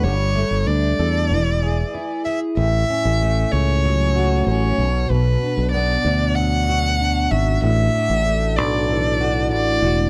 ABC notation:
X:1
M:4/4
L:1/16
Q:1/4=95
K:A
V:1 name="Violin"
c4 d8- d2 e2 | e6 c6 c4 | B4 d4 f6 e2 | e6 d6 d4 |]
V:2 name="Steel-string acoustic guitar"
=G,2 A,2 D2 A2 E,2 ^G2 E2 G2 | A,,2 C2 A,2 C2 F,2 F2 C2 B,,2 | B,,2 D2 B,2 D2 F,2 F2 D2 F2 | A,,2 D2 A,2 D2 E,2 F2 D2 F2 |]
V:3 name="Fingered electric bass" clef=bass
=G,,,3 G,,, D,,2 E,,2 E,,,4 z4 | A,,,2 z A,,,3 C,,6 A,,,2 B,,,2 | B,,,2 z B,,,3 D,,8 G,,,2 | A,,,2 z A,,,3 B,,,6 A,,,2 E,,,2 |]